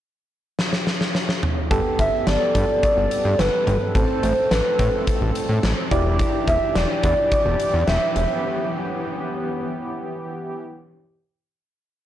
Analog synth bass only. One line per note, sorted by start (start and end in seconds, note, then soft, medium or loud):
1.71 1.81 G1 loud
1.99 2.09 G1 loud
2.27 2.37 G1 medium
2.55 2.65 G2 loud
2.97 3.07 G1 loud
3.25 3.35 G2 loud
3.39 3.49 G1 loud
3.67 3.77 G1 loud
3.95 4.05 A1 loud
4.23 4.33 A1 loud
4.51 4.61 A1 medium
4.79 4.89 A2 loud
5.21 5.31 A1 loud
5.49 5.59 A2 medium
5.63 5.73 A1 loud
5.91 6.22 E1 loud
6.48 6.58 E1 loud
6.75 6.86 E1 loud
7.04 7.14 E2 loud
7.46 7.56 E1 loud
7.74 7.84 E2 loud
7.88 7.98 E1 loud
8.16 8.26 E1 loud